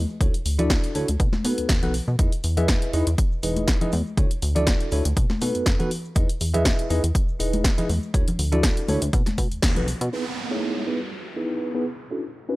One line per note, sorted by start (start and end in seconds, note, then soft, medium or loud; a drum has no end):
0.10 shaker soft
0.21 0.30 D2 loud
0.21 0.32 D4 medium
0.21 0.32 E4 medium
0.21 0.32 F#4 medium
0.21 0.32 A4 medium
0.21 0.32 C#5 medium
0.21 kick loud
0.21 closed hi-hat medium
0.21 shaker medium
0.34 closed hi-hat soft
0.34 shaker soft
0.45 0.78 D2 medium
0.45 open hi-hat loud
0.45 shaker medium
0.59 0.92 D4 medium
0.59 0.92 E4 medium
0.59 0.92 F#4 medium
0.59 0.92 A4 medium
0.59 0.93 D5 loud
0.59 closed hi-hat soft
0.59 low conga medium
0.59 shaker soft
0.70 kick loud
0.70 snare loud
0.70 closed hi-hat medium
0.84 closed hi-hat soft
0.95 1.05 D2 medium
0.95 1.06 D4 medium
0.95 1.06 E4 medium
0.95 1.07 F#4 medium
0.95 1.07 A4 medium
0.95 1.07 C#5 medium
0.95 open hi-hat loud
0.95 shaker medium
1.08 1.17 D2 medium
1.08 closed hi-hat soft
1.08 shaker soft
1.20 1.30 B2 loud
1.20 kick loud
1.20 closed hi-hat medium
1.20 shaker soft
1.33 snare soft
1.33 high conga medium
1.33 shaker soft
1.44 1.54 B2 medium
1.44 1.79 B3 medium
1.44 1.80 D#4 medium
1.44 1.80 F#4 medium
1.44 1.80 A4 medium
1.44 1.80 B4 medium
1.44 open hi-hat loud
1.44 shaker medium
1.58 1.67 D#2 soft
1.58 closed hi-hat soft
1.58 shaker soft
1.69 1.84 D#2 medium
1.69 kick loud
1.69 snare loud
1.69 closed hi-hat medium
1.83 2.00 B1 loud
1.83 1.93 B3 medium
1.83 1.93 D#4 medium
1.83 1.93 F#4 medium
1.83 1.93 A4 medium
1.83 1.93 B4 loud
1.83 closed hi-hat soft
1.83 low conga medium
1.94 open hi-hat loud
1.94 shaker medium
2.08 2.16 B2 medium
2.08 shaker soft
2.19 2.29 E2 loud
2.19 2.30 D#4 medium
2.19 2.31 E4 medium
2.19 2.31 G#4 medium
2.19 2.31 B4 medium
2.19 2.31 D#5 medium
2.19 kick loud
2.19 closed hi-hat medium
2.32 closed hi-hat soft
2.43 2.76 E2 medium
2.43 open hi-hat loud
2.43 shaker medium
2.57 2.91 E4 medium
2.57 2.91 G#4 medium
2.57 2.91 B4 medium
2.57 2.91 D#5 medium
2.57 2.91 E5 loud
2.57 closed hi-hat soft
2.57 low conga medium
2.57 shaker soft
2.68 kick loud
2.68 snare loud
2.68 closed hi-hat medium
2.82 closed hi-hat soft
2.93 3.03 E2 medium
2.93 3.05 D#4 medium
2.93 3.05 E4 medium
2.93 3.05 G#4 medium
2.93 3.05 B4 medium
2.93 3.05 D#5 medium
2.93 open hi-hat loud
2.93 shaker medium
3.07 3.15 E2 medium
3.07 closed hi-hat soft
3.07 shaker soft
3.18 kick loud
3.18 closed hi-hat medium
3.32 shaker soft
3.43 3.75 E1 medium
3.43 3.78 D#4 medium
3.43 3.78 E4 medium
3.43 3.78 G#4 medium
3.43 3.78 B4 medium
3.43 3.78 D#5 medium
3.43 open hi-hat loud
3.43 shaker medium
3.56 closed hi-hat soft
3.56 high conga medium
3.56 shaker soft
3.68 kick loud
3.68 snare loud
3.68 closed hi-hat medium
3.81 3.91 D#4 medium
3.81 3.91 E4 medium
3.81 3.91 G#4 medium
3.81 3.91 B4 medium
3.81 3.91 D#5 loud
3.81 closed hi-hat soft
3.81 low conga medium
3.92 4.02 E2 loud
3.92 open hi-hat loud
3.92 high conga medium
3.92 shaker medium
4.07 shaker soft
4.17 4.27 D2 loud
4.17 4.29 D4 medium
4.17 4.29 E4 medium
4.17 4.29 F#4 medium
4.17 4.29 A4 medium
4.17 4.29 C#5 medium
4.17 kick loud
4.17 closed hi-hat medium
4.17 shaker medium
4.31 closed hi-hat medium
4.31 shaker soft
4.42 4.75 D2 medium
4.42 open hi-hat loud
4.42 shaker medium
4.55 4.89 D4 medium
4.55 4.89 E4 medium
4.55 4.89 F#4 medium
4.55 4.89 A4 medium
4.55 4.89 D5 loud
4.55 closed hi-hat soft
4.55 low conga medium
4.55 shaker soft
4.67 kick loud
4.67 snare loud
4.67 closed hi-hat medium
4.80 closed hi-hat soft
4.91 5.02 D2 medium
4.91 5.03 D4 medium
4.91 5.03 E4 medium
4.91 5.03 F#4 medium
4.91 5.03 A4 medium
4.91 5.03 C#5 medium
4.91 open hi-hat loud
4.91 shaker medium
5.05 5.14 D2 medium
5.05 closed hi-hat medium
5.05 shaker soft
5.16 5.26 B2 loud
5.16 kick loud
5.16 closed hi-hat medium
5.16 shaker soft
5.30 snare soft
5.30 high conga medium
5.30 shaker soft
5.41 5.51 B2 medium
5.41 5.76 B3 medium
5.41 5.76 D#4 medium
5.41 5.76 F#4 medium
5.41 5.77 A4 medium
5.41 5.77 B4 medium
5.41 open hi-hat loud
5.41 shaker medium
5.55 5.64 F#2 soft
5.55 closed hi-hat soft
5.55 shaker soft
5.66 5.76 F#2 medium
5.66 kick loud
5.66 snare loud
5.66 closed hi-hat medium
5.66 shaker medium
5.79 5.89 B3 medium
5.79 5.89 D#4 medium
5.79 5.89 F#4 medium
5.79 5.89 A4 medium
5.79 5.89 B4 loud
5.79 closed hi-hat soft
5.79 low conga medium
5.91 open hi-hat loud
5.91 shaker medium
6.05 shaker soft
6.15 6.26 E2 loud
6.15 6.27 D#4 medium
6.15 6.27 E4 medium
6.15 6.27 G#4 medium
6.15 6.27 B4 medium
6.15 6.27 D#5 medium
6.15 kick loud
6.15 closed hi-hat medium
6.15 shaker medium
6.29 closed hi-hat medium
6.29 shaker soft
6.40 6.73 E2 medium
6.40 open hi-hat loud
6.40 shaker loud
6.54 6.87 E4 medium
6.54 6.87 G#4 medium
6.54 6.88 B4 medium
6.54 6.87 D#5 medium
6.54 6.88 E5 loud
6.54 closed hi-hat soft
6.54 low conga medium
6.54 shaker soft
6.65 kick loud
6.65 snare loud
6.65 closed hi-hat medium
6.79 closed hi-hat soft
6.90 7.00 E2 medium
6.90 7.01 D#4 medium
6.90 7.02 E4 medium
6.90 7.02 G#4 medium
6.90 7.02 B4 medium
6.90 7.02 D#5 medium
6.90 open hi-hat loud
6.90 shaker medium
7.04 7.12 E2 medium
7.04 closed hi-hat medium
7.04 shaker soft
7.15 kick loud
7.15 closed hi-hat medium
7.15 shaker medium
7.28 shaker soft
7.39 7.72 E1 medium
7.39 7.75 D#4 medium
7.39 7.75 E4 medium
7.39 7.75 G#4 medium
7.39 7.75 B4 medium
7.39 7.75 D#5 medium
7.39 open hi-hat medium
7.39 shaker loud
7.53 closed hi-hat soft
7.53 high conga medium
7.53 shaker soft
7.64 kick loud
7.64 snare loud
7.64 closed hi-hat medium
7.78 7.87 D#4 medium
7.78 7.88 E4 medium
7.78 7.88 G#4 medium
7.78 7.88 B4 medium
7.78 7.88 D#5 loud
7.78 closed hi-hat soft
7.78 low conga medium
7.89 7.99 E2 loud
7.89 open hi-hat medium
7.89 high conga medium
7.89 shaker medium
8.03 shaker soft
8.14 8.24 D2 loud
8.14 8.25 D4 medium
8.14 8.25 E4 medium
8.14 8.26 F#4 medium
8.14 8.26 A4 medium
8.14 8.26 C#5 medium
8.14 kick loud
8.14 closed hi-hat medium
8.14 shaker medium
8.28 closed hi-hat medium
8.28 low conga medium
8.28 shaker soft
8.39 8.71 D2 medium
8.39 open hi-hat loud
8.39 shaker medium
8.52 8.86 D4 loud
8.52 8.86 E4 medium
8.52 8.86 F#4 medium
8.52 8.86 A4 medium
8.52 8.86 D5 loud
8.52 closed hi-hat soft
8.52 low conga medium
8.52 shaker soft
8.63 kick loud
8.63 snare loud
8.63 closed hi-hat medium
8.77 closed hi-hat soft
8.88 8.98 D2 medium
8.88 9.00 D4 medium
8.88 9.00 E4 medium
8.88 9.00 F#4 medium
8.88 9.00 A4 medium
8.88 9.00 C#5 medium
8.88 open hi-hat loud
8.88 high conga medium
8.88 shaker loud
9.01 9.10 D2 medium
9.01 closed hi-hat medium
9.01 shaker soft
9.13 9.23 B2 loud
9.13 kick loud
9.13 closed hi-hat medium
9.13 shaker medium
9.26 snare soft
9.26 closed hi-hat soft
9.26 high conga medium
9.26 shaker soft
9.38 9.48 B2 loud
9.38 kick medium
9.38 open hi-hat loud
9.38 shaker loud
9.51 9.61 D#2 soft
9.51 closed hi-hat soft
9.51 shaker soft
9.62 9.78 D#2 medium
9.62 kick loud
9.62 snare loud
9.62 closed hi-hat medium
9.76 9.94 B1 loud
9.76 9.86 B3 medium
9.76 9.86 D#4 medium
9.76 9.86 F#4 medium
9.76 9.86 A4 medium
9.76 9.86 B4 medium
9.76 closed hi-hat soft
9.76 low conga medium
9.76 shaker soft
9.88 open hi-hat loud
9.88 shaker medium
10.01 10.09 B2 loud
10.01 closed hi-hat soft
10.01 shaker soft
10.12 10.24 B3 medium
10.12 10.24 D#4 medium
10.12 10.24 E4 medium
10.12 10.24 G#4 medium
10.12 10.24 B4 medium
10.12 downlifter medium
10.51 10.84 B3 medium
10.51 10.84 D#4 medium
10.51 10.84 E4 medium
10.51 10.84 G#4 medium
10.51 10.84 C#5 medium
10.87 10.98 B3 medium
10.87 10.98 D#4 medium
10.87 10.98 E4 medium
10.87 10.98 G#4 medium
10.87 10.98 B4 medium
11.36 11.71 B3 medium
11.36 11.71 D#4 medium
11.36 11.71 E4 medium
11.36 11.72 G#4 medium
11.36 11.72 B4 medium
11.74 11.84 B3 medium
11.74 11.84 D#4 medium
11.74 11.84 E4 medium
11.74 11.84 G#4 medium
11.74 11.85 B4 medium
12.11 12.22 C#4 medium
12.11 12.22 D4 medium
12.11 12.22 E4 medium
12.11 12.22 F#4 medium
12.11 12.22 A4 medium
12.49 12.56 C#4 medium
12.49 12.56 D4 medium
12.49 12.56 E4 medium
12.49 12.56 F#4 medium
12.49 12.56 B4 medium